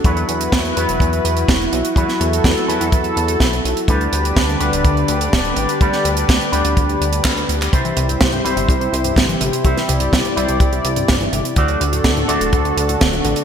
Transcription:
<<
  \new Staff \with { instrumentName = "Analog synth pad" } { \time 4/4 \key e \minor \tempo 4 = 125 << { b'1 | a'1 | <d d' d''>1~ | <d d' d''>1 |
c''1 | d''1 | a'1 | } \\ { <e' fis'>1~ | <e' fis'>1 | <g' b'>1~ | <g' b'>1 |
<e' g'>1~ | <e' g'>1 | <d' fis'>1 | } >> }
  \new Staff \with { instrumentName = "Clean electric guitar" } { \time 4/4 \key e \minor <fis b e' b'>4. <fis b e' b'>2~ <fis b e' b'>8 | <fis b e' b'>4. <fis b e' b'>2~ <fis b e' b'>8 | <g b d' b'>4. <g b d' b'>2~ <g b d' b'>8 | <g b d' b'>4. <g b d' b'>2~ <g b d' b'>8 |
<g c' e' c''>4. <g c' e' c''>2~ <g c' e' c''>8 | <g c' e' c''>4. <g c' e' c''>2~ <g c' e' c''>8 | <a d' fis' d''>4. <a d' fis' d''>2~ <a d' fis' d''>8 | }
  \new Staff \with { instrumentName = "Synth arpeggio sound" } { \clef bass \time 4/4 \key e \minor r1 | r1 | r1 | r1 |
c16 e16 c16 g,16 g16 g,16 g16 c16 c16 c16 c16 g,16 c16 e16 c16 c16 | c16 e16 c16 g,16 g16 g,16 g16 c16 c16 c16 c16 g,16 c16 e16 c16 c16 | d16 fis16 d16 a,16 a16 a,16 a16 d16 d16 d16 d16 a,16 d16 fis16 d16 d16 | }
  \new Staff \with { instrumentName = "Analog synth bass" } { \clef bass \time 4/4 \key e \minor e,8 e,8 e,8 e,16 e,,16 e,8 e,8 e,,8 b,,16 r16 | e,16 r16 e,8 e,16 r16 e,16 e,16 e,8 e,8 b,,8 b,,16 r16 | d,8 d,8 d,8 d,16 d,,16 d,8 d,8 d,,8 a,,16 r16 | d,16 r16 d,8 d,16 r16 d,16 d,16 d,8 d,8 d,8 d,8 |
c,8 c,8 c,8 c,16 g,,16 c,8 c,8 g,,8 g,,16 r16 | c,16 r16 c,8 c,16 r16 c,16 c,16 c,8 c,8 g,,8 g,,16 r16 | d,8 d,8 d,8 d,16 d,,16 d,8 d,8 d,,8 a,,16 r16 | }
  \new DrumStaff \with { instrumentName = "Drums" } \drummode { \time 4/4 <hh bd>16 hh16 hh16 hh16 <hh bd sn>16 hh16 hh16 hh16 <hh bd>16 hh16 hh16 hh16 <hh bd sn>16 hh16 hh16 hh16 | <hh bd>16 <hh sn>16 hh16 hh16 <hh bd sn>16 hh16 hh16 hh16 <hh bd>16 hh16 hh16 hh16 <hh bd sn>16 hh16 hh16 hh16 | <hh bd>16 hh16 hh16 hh16 <hh bd sn>16 hh16 hh16 hh16 <hh bd>16 hh16 hh16 hh16 <hh bd sn>16 hh16 hh16 hh16 | <hh bd>16 <hh sn>16 hh16 hh16 <hh bd sn>16 hh16 hh16 hh16 <hh bd>16 hh16 hh16 hh16 <hc hh bd sn>16 hh16 hh16 <hc hh>16 |
<hh bd>16 hh16 hh16 hh16 <hh bd sn>16 hh16 hh16 hh16 <hh bd>16 hh16 hh16 hh16 <hh bd sn>16 hh16 hh16 hh16 | <hh bd>16 <hh sn>16 hh16 hh16 <hh bd sn>16 hh16 hh16 hh16 <hh bd>16 hh16 hh16 hh16 <hh bd sn>16 hh16 hh16 hh16 | <hh bd>16 hh16 hh16 hh16 <hh bd sn>16 hh16 hh16 hh16 <hh bd>16 hh16 hh16 hh16 <hh bd sn>16 hh16 hh16 hh16 | }
>>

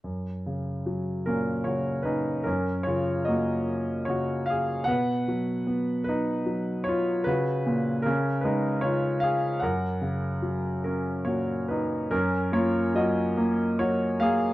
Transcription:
<<
  \new Staff \with { instrumentName = "Grand piano" } { \time 3/4 \key fis \major \tempo 4 = 75 r4. <cis' ais'>8 <fis' cis''>8 <dis' b'>8 | <cis' ais'>8 <eis' cis''>8 <fis' dis''>4 <fis' cis''>8 <gis' eis''>8 | <b' fis''>4. <dis' b'>4 <eis' cis''>8 | <fis' b'>4 <cis' ais'>8 <dis' b'>8 <eis' cis''>8 <gis' eis''>8 |
<ais' fis''>4. <cis' ais'>8 <fis' cis''>8 <dis' b'>8 | <cis' ais'>8 <eis' cis''>8 <fis' dis''>4 <fis' cis''>8 <gis' eis''>8 | }
  \new Staff \with { instrumentName = "Grand piano" } { \clef bass \time 3/4 \key fis \major fis,8 cis8 fis8 ais,8 cis8 cis'8 | fis,8 cis8 ais4 cis4 | b,8 fis8 b4 fis4 | cis8 ais,8 cis8 gis8 cis4 |
fis,8 cis8 fis4 ais,4 | fis,8 ais8 fis8 ais8 fis8 ais8 | }
>>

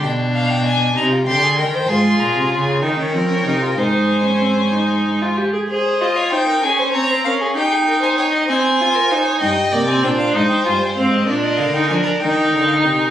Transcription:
<<
  \new Staff \with { instrumentName = "Violin" } { \time 6/8 \key c \phrygian \tempo 4. = 64 g''8 f''16 g''16 aes''8 bes''8 c'''8 g''8 | \key aes \major c'''8 bes''8 aes''8 g''4. | aes''2~ aes''8 r8 | r8 ees''16 f''16 g''8 aes''8 bes''8 f''8 |
g''8. aes''16 g''8 aes''4. | g''8. aes''16 g''16 f''16 ees''16 g''16 aes''16 g''16 f''16 ees''16 | d''16 ees''16 f''16 g''16 aes''16 bes''16 g''8. f''16 g''16 aes''16 | }
  \new Staff \with { instrumentName = "Violin" } { \time 6/8 \key c \phrygian d'4. ees'16 f'16 g'16 aes'16 bes'16 c''16 | \key aes \major aes'4. bes'4. | c''2~ c''8 r8 | c''8. des''16 c''16 bes'16 aes'16 c''16 des''16 c''16 bes'16 aes'16 |
g'16 aes'16 bes'16 c''16 des''16 ees''16 c''8. bes'16 c''16 des''16 | ees''8 d''8 c''2 | bes'2. | }
  \new Staff \with { instrumentName = "Viola" } { \time 6/8 \key c \phrygian r2. | \key aes \major f'4. ees'16 des'16 c'16 des'16 ees'16 f'16 | ees'8. des'16 c'16 des'16 ees'8. f'16 g'16 aes'16 | aes'8 f'8 ees'8 des'8 c'8 des'8 |
ees'4. c'8 f'8 ees'8 | ees'8 bes16 c'16 d'8 ees'8 f'8 c'8 | d'8. ees'16 d'8 ees'4. | }
  \new Staff \with { instrumentName = "Cello" } { \clef bass \time 6/8 \key c \phrygian b,4. c8 d8 ees8 | \key aes \major aes,8 bes,16 c16 des8 ees8 f8 c8 | aes,2~ aes,8 r8 | r2. |
r2. | g,8 c8 bes,8 aes,8 g,8 aes,8 | bes,8 d8 f8 ees8 d8 c8 | }
>>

